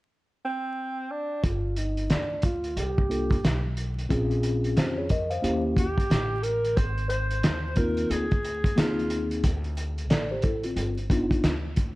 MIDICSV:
0, 0, Header, 1, 6, 480
1, 0, Start_track
1, 0, Key_signature, -2, "minor"
1, 0, Tempo, 666667
1, 1034, Time_signature, 4, 2, 24, 8
1, 8606, End_track
2, 0, Start_track
2, 0, Title_t, "Alto saxophone"
2, 0, Program_c, 0, 65
2, 323, Note_on_c, 0, 60, 79
2, 801, Note_on_c, 0, 62, 81
2, 812, Note_off_c, 0, 60, 0
2, 1042, Note_on_c, 0, 65, 82
2, 1053, Note_off_c, 0, 62, 0
2, 1276, Note_on_c, 0, 63, 72
2, 1287, Note_off_c, 0, 65, 0
2, 1513, Note_off_c, 0, 63, 0
2, 1518, Note_on_c, 0, 62, 81
2, 1739, Note_off_c, 0, 62, 0
2, 1761, Note_on_c, 0, 65, 86
2, 1999, Note_on_c, 0, 67, 99
2, 2010, Note_off_c, 0, 65, 0
2, 2716, Note_off_c, 0, 67, 0
2, 4164, Note_on_c, 0, 67, 96
2, 4629, Note_on_c, 0, 70, 103
2, 4639, Note_off_c, 0, 67, 0
2, 4871, Note_on_c, 0, 72, 104
2, 4881, Note_off_c, 0, 70, 0
2, 5102, Note_off_c, 0, 72, 0
2, 5107, Note_on_c, 0, 72, 106
2, 5595, Note_on_c, 0, 70, 86
2, 5606, Note_off_c, 0, 72, 0
2, 5837, Note_on_c, 0, 68, 88
2, 5848, Note_off_c, 0, 70, 0
2, 6325, Note_on_c, 0, 65, 70
2, 6336, Note_off_c, 0, 68, 0
2, 6707, Note_off_c, 0, 65, 0
2, 8606, End_track
3, 0, Start_track
3, 0, Title_t, "Tine electric piano"
3, 0, Program_c, 1, 4
3, 2223, Note_on_c, 1, 58, 54
3, 2228, Note_on_c, 1, 62, 47
3, 2230, Note_on_c, 1, 65, 50
3, 2239, Note_on_c, 1, 69, 55
3, 2413, Note_off_c, 1, 58, 0
3, 2416, Note_off_c, 1, 62, 0
3, 2417, Note_off_c, 1, 65, 0
3, 2421, Note_off_c, 1, 69, 0
3, 2946, Note_on_c, 1, 60, 69
3, 2950, Note_on_c, 1, 61, 62
3, 2955, Note_on_c, 1, 65, 64
3, 2958, Note_on_c, 1, 68, 81
3, 3436, Note_off_c, 1, 68, 0
3, 3436, Note_on_c, 1, 72, 53
3, 3441, Note_on_c, 1, 67, 41
3, 3575, Note_off_c, 1, 72, 0
3, 3578, Note_off_c, 1, 67, 0
3, 3583, Note_on_c, 1, 73, 58
3, 3587, Note_on_c, 1, 68, 51
3, 3633, Note_off_c, 1, 60, 0
3, 3635, Note_off_c, 1, 61, 0
3, 3637, Note_off_c, 1, 65, 0
3, 3671, Note_off_c, 1, 73, 0
3, 3673, Note_off_c, 1, 68, 0
3, 3679, Note_on_c, 1, 75, 62
3, 3680, Note_on_c, 1, 70, 50
3, 3817, Note_off_c, 1, 70, 0
3, 3817, Note_off_c, 1, 75, 0
3, 3818, Note_on_c, 1, 77, 59
3, 3826, Note_on_c, 1, 72, 54
3, 3903, Note_on_c, 1, 58, 69
3, 3906, Note_on_c, 1, 61, 57
3, 3913, Note_on_c, 1, 64, 61
3, 3916, Note_on_c, 1, 67, 76
3, 4048, Note_off_c, 1, 77, 0
3, 4052, Note_off_c, 1, 72, 0
3, 4208, Note_off_c, 1, 58, 0
3, 4209, Note_off_c, 1, 61, 0
3, 4212, Note_off_c, 1, 64, 0
3, 4214, Note_off_c, 1, 67, 0
3, 5585, Note_on_c, 1, 58, 63
3, 5591, Note_on_c, 1, 60, 55
3, 5597, Note_on_c, 1, 63, 49
3, 5603, Note_on_c, 1, 65, 68
3, 5948, Note_off_c, 1, 58, 0
3, 5951, Note_off_c, 1, 60, 0
3, 5954, Note_off_c, 1, 63, 0
3, 5957, Note_off_c, 1, 65, 0
3, 6306, Note_on_c, 1, 58, 62
3, 6309, Note_on_c, 1, 59, 44
3, 6315, Note_on_c, 1, 63, 57
3, 6320, Note_on_c, 1, 68, 72
3, 6355, Note_on_c, 1, 60, 55
3, 6369, Note_off_c, 1, 59, 0
3, 6790, Note_off_c, 1, 58, 0
3, 6795, Note_off_c, 1, 63, 0
3, 6797, Note_off_c, 1, 68, 0
3, 6815, Note_off_c, 1, 60, 0
3, 7274, Note_on_c, 1, 74, 50
3, 7277, Note_on_c, 1, 69, 46
3, 7414, Note_off_c, 1, 74, 0
3, 7416, Note_off_c, 1, 69, 0
3, 7426, Note_on_c, 1, 72, 61
3, 7428, Note_on_c, 1, 67, 52
3, 7510, Note_on_c, 1, 69, 65
3, 7512, Note_off_c, 1, 72, 0
3, 7513, Note_off_c, 1, 67, 0
3, 7514, Note_on_c, 1, 64, 53
3, 7652, Note_off_c, 1, 69, 0
3, 7654, Note_off_c, 1, 64, 0
3, 7662, Note_on_c, 1, 65, 57
3, 7671, Note_on_c, 1, 60, 50
3, 7890, Note_off_c, 1, 65, 0
3, 7895, Note_off_c, 1, 60, 0
3, 7993, Note_on_c, 1, 59, 69
3, 7997, Note_on_c, 1, 62, 63
3, 8002, Note_on_c, 1, 63, 63
3, 8008, Note_on_c, 1, 65, 73
3, 8293, Note_off_c, 1, 59, 0
3, 8295, Note_off_c, 1, 62, 0
3, 8297, Note_off_c, 1, 63, 0
3, 8300, Note_off_c, 1, 65, 0
3, 8606, End_track
4, 0, Start_track
4, 0, Title_t, "Upright bass"
4, 0, Program_c, 2, 32
4, 1035, Note_on_c, 2, 31, 89
4, 1490, Note_off_c, 2, 31, 0
4, 1518, Note_on_c, 2, 38, 81
4, 1972, Note_off_c, 2, 38, 0
4, 1990, Note_on_c, 2, 36, 82
4, 2448, Note_off_c, 2, 36, 0
4, 2475, Note_on_c, 2, 35, 75
4, 2931, Note_off_c, 2, 35, 0
4, 2955, Note_on_c, 2, 34, 83
4, 3411, Note_off_c, 2, 34, 0
4, 3430, Note_on_c, 2, 41, 75
4, 3888, Note_off_c, 2, 41, 0
4, 3913, Note_on_c, 2, 39, 76
4, 4281, Note_off_c, 2, 39, 0
4, 4392, Note_on_c, 2, 33, 90
4, 4849, Note_off_c, 2, 33, 0
4, 4872, Note_on_c, 2, 32, 95
4, 5329, Note_off_c, 2, 32, 0
4, 5355, Note_on_c, 2, 39, 84
4, 5810, Note_off_c, 2, 39, 0
4, 5831, Note_on_c, 2, 38, 79
4, 6288, Note_off_c, 2, 38, 0
4, 6311, Note_on_c, 2, 39, 75
4, 6769, Note_off_c, 2, 39, 0
4, 6794, Note_on_c, 2, 38, 97
4, 7269, Note_off_c, 2, 38, 0
4, 7269, Note_on_c, 2, 33, 77
4, 7727, Note_off_c, 2, 33, 0
4, 7747, Note_on_c, 2, 31, 79
4, 8207, Note_off_c, 2, 31, 0
4, 8234, Note_on_c, 2, 38, 81
4, 8606, Note_off_c, 2, 38, 0
4, 8606, End_track
5, 0, Start_track
5, 0, Title_t, "Muted upright bass strokes"
5, 4303, Note_on_c, 9, 29, 41
5, 4375, Note_off_c, 9, 29, 0
5, 8606, End_track
6, 0, Start_track
6, 0, Title_t, "Drums"
6, 1034, Note_on_c, 9, 36, 91
6, 1034, Note_on_c, 9, 42, 72
6, 1106, Note_off_c, 9, 36, 0
6, 1106, Note_off_c, 9, 42, 0
6, 1271, Note_on_c, 9, 42, 65
6, 1343, Note_off_c, 9, 42, 0
6, 1420, Note_on_c, 9, 42, 40
6, 1492, Note_off_c, 9, 42, 0
6, 1510, Note_on_c, 9, 42, 69
6, 1515, Note_on_c, 9, 38, 94
6, 1582, Note_off_c, 9, 42, 0
6, 1587, Note_off_c, 9, 38, 0
6, 1743, Note_on_c, 9, 42, 65
6, 1752, Note_on_c, 9, 36, 74
6, 1815, Note_off_c, 9, 42, 0
6, 1824, Note_off_c, 9, 36, 0
6, 1900, Note_on_c, 9, 42, 44
6, 1972, Note_off_c, 9, 42, 0
6, 1994, Note_on_c, 9, 42, 82
6, 2066, Note_off_c, 9, 42, 0
6, 2147, Note_on_c, 9, 36, 84
6, 2219, Note_off_c, 9, 36, 0
6, 2239, Note_on_c, 9, 42, 66
6, 2311, Note_off_c, 9, 42, 0
6, 2381, Note_on_c, 9, 36, 84
6, 2392, Note_on_c, 9, 42, 42
6, 2453, Note_off_c, 9, 36, 0
6, 2464, Note_off_c, 9, 42, 0
6, 2481, Note_on_c, 9, 42, 85
6, 2482, Note_on_c, 9, 38, 106
6, 2553, Note_off_c, 9, 42, 0
6, 2554, Note_off_c, 9, 38, 0
6, 2714, Note_on_c, 9, 42, 58
6, 2786, Note_off_c, 9, 42, 0
6, 2870, Note_on_c, 9, 42, 43
6, 2942, Note_off_c, 9, 42, 0
6, 2955, Note_on_c, 9, 36, 95
6, 2955, Note_on_c, 9, 42, 73
6, 3027, Note_off_c, 9, 36, 0
6, 3027, Note_off_c, 9, 42, 0
6, 3102, Note_on_c, 9, 42, 33
6, 3174, Note_off_c, 9, 42, 0
6, 3191, Note_on_c, 9, 42, 60
6, 3263, Note_off_c, 9, 42, 0
6, 3342, Note_on_c, 9, 42, 42
6, 3414, Note_off_c, 9, 42, 0
6, 3433, Note_on_c, 9, 42, 71
6, 3437, Note_on_c, 9, 38, 92
6, 3505, Note_off_c, 9, 42, 0
6, 3509, Note_off_c, 9, 38, 0
6, 3667, Note_on_c, 9, 42, 67
6, 3674, Note_on_c, 9, 36, 69
6, 3739, Note_off_c, 9, 42, 0
6, 3746, Note_off_c, 9, 36, 0
6, 3821, Note_on_c, 9, 42, 50
6, 3893, Note_off_c, 9, 42, 0
6, 3917, Note_on_c, 9, 42, 75
6, 3989, Note_off_c, 9, 42, 0
6, 4151, Note_on_c, 9, 36, 76
6, 4160, Note_on_c, 9, 42, 68
6, 4223, Note_off_c, 9, 36, 0
6, 4232, Note_off_c, 9, 42, 0
6, 4303, Note_on_c, 9, 36, 79
6, 4317, Note_on_c, 9, 42, 45
6, 4375, Note_off_c, 9, 36, 0
6, 4389, Note_off_c, 9, 42, 0
6, 4400, Note_on_c, 9, 42, 86
6, 4401, Note_on_c, 9, 38, 97
6, 4472, Note_off_c, 9, 42, 0
6, 4473, Note_off_c, 9, 38, 0
6, 4632, Note_on_c, 9, 42, 62
6, 4704, Note_off_c, 9, 42, 0
6, 4785, Note_on_c, 9, 42, 43
6, 4857, Note_off_c, 9, 42, 0
6, 4876, Note_on_c, 9, 36, 89
6, 4876, Note_on_c, 9, 42, 72
6, 4948, Note_off_c, 9, 36, 0
6, 4948, Note_off_c, 9, 42, 0
6, 5022, Note_on_c, 9, 42, 30
6, 5094, Note_off_c, 9, 42, 0
6, 5111, Note_on_c, 9, 42, 69
6, 5183, Note_off_c, 9, 42, 0
6, 5260, Note_on_c, 9, 42, 46
6, 5332, Note_off_c, 9, 42, 0
6, 5352, Note_on_c, 9, 42, 73
6, 5357, Note_on_c, 9, 38, 102
6, 5424, Note_off_c, 9, 42, 0
6, 5429, Note_off_c, 9, 38, 0
6, 5585, Note_on_c, 9, 42, 65
6, 5593, Note_on_c, 9, 36, 74
6, 5657, Note_off_c, 9, 42, 0
6, 5665, Note_off_c, 9, 36, 0
6, 5738, Note_on_c, 9, 42, 46
6, 5810, Note_off_c, 9, 42, 0
6, 5837, Note_on_c, 9, 42, 80
6, 5909, Note_off_c, 9, 42, 0
6, 5985, Note_on_c, 9, 42, 28
6, 5989, Note_on_c, 9, 36, 81
6, 6057, Note_off_c, 9, 42, 0
6, 6061, Note_off_c, 9, 36, 0
6, 6080, Note_on_c, 9, 42, 65
6, 6152, Note_off_c, 9, 42, 0
6, 6222, Note_on_c, 9, 36, 86
6, 6233, Note_on_c, 9, 42, 47
6, 6294, Note_off_c, 9, 36, 0
6, 6305, Note_off_c, 9, 42, 0
6, 6319, Note_on_c, 9, 42, 86
6, 6320, Note_on_c, 9, 38, 112
6, 6391, Note_off_c, 9, 42, 0
6, 6392, Note_off_c, 9, 38, 0
6, 6475, Note_on_c, 9, 42, 28
6, 6547, Note_off_c, 9, 42, 0
6, 6553, Note_on_c, 9, 42, 64
6, 6625, Note_off_c, 9, 42, 0
6, 6704, Note_on_c, 9, 42, 44
6, 6776, Note_off_c, 9, 42, 0
6, 6794, Note_on_c, 9, 42, 80
6, 6796, Note_on_c, 9, 36, 90
6, 6866, Note_off_c, 9, 42, 0
6, 6868, Note_off_c, 9, 36, 0
6, 6942, Note_on_c, 9, 42, 32
6, 7014, Note_off_c, 9, 42, 0
6, 7034, Note_on_c, 9, 42, 65
6, 7106, Note_off_c, 9, 42, 0
6, 7185, Note_on_c, 9, 42, 42
6, 7257, Note_off_c, 9, 42, 0
6, 7273, Note_on_c, 9, 42, 71
6, 7277, Note_on_c, 9, 38, 91
6, 7345, Note_off_c, 9, 42, 0
6, 7349, Note_off_c, 9, 38, 0
6, 7504, Note_on_c, 9, 42, 66
6, 7514, Note_on_c, 9, 36, 74
6, 7576, Note_off_c, 9, 42, 0
6, 7586, Note_off_c, 9, 36, 0
6, 7657, Note_on_c, 9, 42, 48
6, 7729, Note_off_c, 9, 42, 0
6, 7751, Note_on_c, 9, 42, 71
6, 7823, Note_off_c, 9, 42, 0
6, 7902, Note_on_c, 9, 42, 30
6, 7974, Note_off_c, 9, 42, 0
6, 7991, Note_on_c, 9, 36, 86
6, 7998, Note_on_c, 9, 42, 74
6, 8063, Note_off_c, 9, 36, 0
6, 8070, Note_off_c, 9, 42, 0
6, 8142, Note_on_c, 9, 36, 90
6, 8150, Note_on_c, 9, 42, 45
6, 8214, Note_off_c, 9, 36, 0
6, 8222, Note_off_c, 9, 42, 0
6, 8234, Note_on_c, 9, 42, 84
6, 8235, Note_on_c, 9, 38, 103
6, 8306, Note_off_c, 9, 42, 0
6, 8307, Note_off_c, 9, 38, 0
6, 8469, Note_on_c, 9, 42, 64
6, 8476, Note_on_c, 9, 36, 79
6, 8541, Note_off_c, 9, 42, 0
6, 8548, Note_off_c, 9, 36, 0
6, 8606, End_track
0, 0, End_of_file